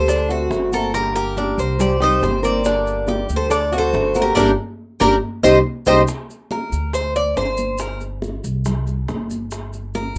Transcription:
Already playing: D2 A4 C5
0.08 D4, muted steel-string acoustic guitar stroke, high bongo, high conga, maracas
0.29 A3 C4 F#4, high conga, maracas
0.50 G1 D3 A3 C4 F#4, high bongo, low bongo, high conga, maracas
0.72 A3 C4 F#4 A4 A#4, high conga, maracas
0.93 D3 G3 A#3 D4 G4 A#4, high bongo, maracas
1.15 G4 A#4, high bongo, high conga, maracas
1.37 G3 A#3 D4 G4, high bongo, high conga, maracas
1.58 C2 C5, high bongo, high conga, maracas
1.79 G4 D5, muted steel-string acoustic guitar stroke, high bongo, high conga, low conga, maracas
2.00 D#3 G3 C4 D#4 G4 C5, high bongo, high conga, low conga, maracas
2.21 G1 D#3 G3 C4 G4 C5, high bongo, low bongo, high conga, maracas
2.43 D#3 G3 C4 G4 A#4 D5, high conga, maracas
2.64 D3 G3 A#3 D4 G4, high bongo, high conga, maracas
2.87 high conga, maracas
3.07 G3 A#3 D4 G4, high bongo, high conga, maracas
3.29 D2, high conga, maracas
3.36 A4 C5
3.50 D4 A4 D5, muted steel-string acoustic guitar stroke, high bongo, high conga, maracas
3.72 A3 C4 F#4, high conga, maracas
3.78 A4 C5
3.93 G1 D3 A3 C4 F#4, high bongo, low bongo, high conga, maracas
4.15 A3 C4 F#4 A#4, high conga, maracas
4.22 G4 A#4
4.35 G1 G3 A#3 D4 G4 A#4 D5, high bongo, high conga, maracas
5.00 G1 G3 A#3 D4 G4 A#4 D5, high bongo, high conga, maracas
5.43 C2 D#3 G3 C4 D#4 G4 C5 D#5, high bongo, high conga, maracas
5.86 C2 D#3 G3 C4 D#4 G4 C5 D#5, high bongo, high conga, maracas
6.08 high bongo, high conga, maracas
6.30 high conga, maracas
6.51 A#4, high bongo, high conga, maracas
6.72 D2, high conga, maracas
6.93 C5, high bongo, high conga, maracas
7.15 D5, high conga, maracas
7.36 G1 C5, high bongo, low bongo, high conga, maracas
7.57 high conga, maracas
7.78 A#4, high bongo, high conga, maracas
8.01 high bongo, high conga, maracas
8.22 high bongo, high conga, maracas
8.44 C2, high bongo, high conga, maracas
8.65 high bongo, high conga, low conga, maracas
8.87 high bongo, high conga, maracas
9.08 G1, high bongo, low bongo, high conga, maracas
9.30 high conga, maracas
9.51 high bongo, high conga, maracas
9.73 high conga, maracas
9.94 A#4, high bongo, high conga, maracas

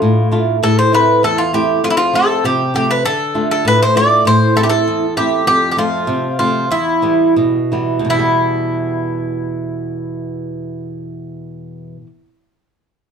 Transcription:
Already playing: A3 D4 F4
0.02 A2
0.31 A3 D4 F4
0.63 A2 A4
0.79 C5
0.92 A3 C4 E4 B4
1.23 E2 A4
1.38 F4
1.53 A3 C4 E4 G4
1.84 F2 F4
1.90 E4
1.97 F4
2.13 F3 A3 C4 A4
2.44 C3 G4
2.74 F3 A3 C4 G4
2.91 B4
3.05 D3 A4
3.35 A3 D4 F4
3.51 A4
3.65 A2 B4
3.82 C5
3.95 A3 D4 F4 D5
4.25 A2 C5
4.55 A3 C4 E4 A4
4.63 G4
4.70 A4
4.87 E2
5.17 A3 C4 E4 G4
5.47 F2 G4
5.71 G4
5.77 F3 A3 C4 F4
6.07 C3
6.39 F3 A3 C4 F4
6.71 E2 E4
7.02 E3 G3 B3
7.36 B2
7.72 E3 G3 B3
7.99 E2
8.04 B2
8.10 E3 E4
8.14 G3
8.19 B3

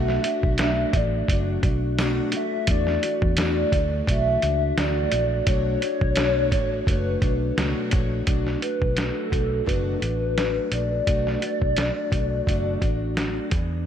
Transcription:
Already playing: B1 B2 F#3 A3 D4 F#4 E5
0.08 snare
0.23 A3 D4 F#4, closed hi-hat
0.43 B1, kick
0.58 B2 F#3 A3 D4 F#4, snare, closed hi-hat
0.93 A1 D4 F#4, kick, closed hi-hat
0.97 A3 D5
1.28 F#1 F#3 A3 D4, kick, closed hi-hat
1.33 F#4
1.63 B1 D4 F#4, kick, closed hi-hat
1.67 A3
1.98 B2 F#3 A3 D4 F#4, snare, closed hi-hat
2.32 D4 F#4, closed hi-hat
2.36 A3 E5
2.67 E2 E3 A3 D4 F#4 D5, kick, closed hi-hat
2.87 snare
3.03 A3 D4 F#4, closed hi-hat
3.22 E2, kick
3.37 E3 A3 D4 F#4, snare, closed hi-hat
3.41 D5
3.72 D2 D4 F#4, kick, closed hi-hat
3.76 A3
4.07 B1 E3 A3 D4, kick, closed hi-hat
4.11 F#4 E5
4.42 C#2 D4 F#4, closed hi-hat
4.46 A3
4.77 D2 E3 A3 D4 F#4 D5, snare, closed hi-hat
5.12 A#1 D4 F#4, closed hi-hat
5.16 A3
5.46 B1 B2 F#3 A3 D4 F#4 C#5, kick, closed hi-hat
5.81 A3 D4 F#4 C#5, closed hi-hat
6.01 B1, kick
6.16 B2 F#3 A3 D4 F#4 C#5, snare, closed hi-hat
6.51 A1 A3 D4 F#4 C#5, kick, closed hi-hat
6.86 F#1 A3 D4 F#4 B4 C#5, kick, closed hi-hat
7.20 B1 D4 F#4 C#5, kick, closed hi-hat
7.25 A3
7.57 C#2 B2 F#3 A3 D4 F#4 C#5, snare, closed hi-hat
7.91 A#1 A3 D4 F#4 C#5, kick, closed hi-hat
8.26 B1 B2 F#3 A3 D4 F#4, kick, closed hi-hat
8.47 snare
8.61 A3 D4 F#4 B4, closed hi-hat
8.81 B1, kick
8.95 F#3 A3 D4 A4, snare, closed hi-hat
8.99 F#4
9.30 B1 D4 F#4, kick, closed hi-hat
9.35 A3
9.64 F#1 B2 F#3 A3 D4 F#4 B4, kick
9.69 closed hi-hat
10.00 A1 D4 F#4, closed hi-hat
10.04 A3
10.37 F#3 A3 D4 F#4, snare, closed hi-hat
10.72 A#1 A3 D4 F#4 D5, closed hi-hat
11.06 B1 B2 F#3 A3 D4 F#4, kick, closed hi-hat
11.27 snare
11.41 D4 F#4, closed hi-hat
11.45 A3
11.62 B1, kick
11.77 F#3 A3 D4, snare, closed hi-hat
11.81 F#4
12.11 B1 A3 D4 F#4, kick, closed hi-hat
12.46 F#1 B2 F#3 A3 D4 F#4, kick, closed hi-hat
12.81 A1 A3 D4 F#4, kick, closed hi-hat
13.15 F#3 A3 D4, snare, closed hi-hat
13.19 F#4
13.50 E2 D4 G#4, kick, closed hi-hat
13.54 B3

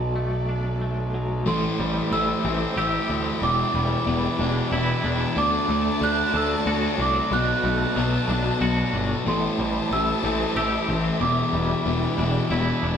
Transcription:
Already playing: B1 B2 F#3 B3 F#4 A4 D5 A5
0.16 A3
0.49 D4
0.81 A3
1.14 F#3
1.46 A1 A2 E3 A3 E4 A4 C5 G5 C6
1.80 A1 G3
2.11 A1 A2 E3 A3 E6
2.45 A1 A2 E3 A3 C4
2.77 A1 A2 E3 A3 G4 E6
3.10 D2 C4
3.42 E1 E2 B2 E3 E4 B4 D5 D6
3.74 E1 G3
4.07 E1 E2 B2 E3
4.39 E1 E2 B2 E3 D4
4.72 E1 E2 B2 E3 E4
5.04 E1 D4
5.35 D2 D3 A3 D4 F#4 A4 A5 D6
5.69 D2 A3
6.01 D2 D3 A3 D4 F#6
6.34 D2 D3 A3 D4 E6
6.66 D2 D3 A3 D4 F#4
6.98 C2 D4 D6
7.31 B1 B2 F#3 B3 B4 A5 F#6
7.64 B1 A3
7.96 B1 B2 F#3 B3
8.28 B1 B2 F#3 B3 D4
8.61 B1 B2 F#3 B3 F#4
8.93 G1 D4
9.25 A1 A2 E3 A3 G4 C5 E5 A5 C6
9.59 A1 G3
9.91 A1 A2 E3 A3 E6
10.23 A1 A2 E3 A3 C4
10.56 A1 A2 E3 A3 G4 E6
10.89 A1 C4
11.21 E1 E2 B2 E3 D4 B4 G5 D6
11.53 E1 G3
11.85 E1 E2 B2 E3
12.17 E1 E2 B2 E3 D4
12.50 E1 E2 B2 E3 E4
12.83 E1 D4

